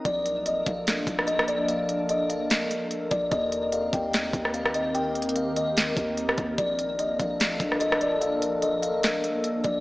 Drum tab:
HH |x-----x-----x-----x-----x-----x-----x-----x-----|x-----x-----x-----x-----x-----x-----x-----x-----|x-----x-----x-----x-----x-----x-----x-----x-----|x-----x-x-x-x-----x-----x-----x-----x-----x-----|
SD |------------------------o--------r-----r--------|------------------------o-----------------------|------------------------o--------r-----r--------|------------------------o--------------r--------|
BD |o-----------------o-----------o-----------------|------------------------------------------o-----|o-----------------o-----------o-----------------|------------------------------o-----------o-----|

HH |x-----x-----x-----x-----x-----x-----x-----x-----|x-----x-----x-----x-----x-----x-----x-----x-----|
SD |------------------------o--------r-----r--------|------------------------o-----------------------|
BD |o-----------------o-----------o-----------------|------------------------------------------o-----|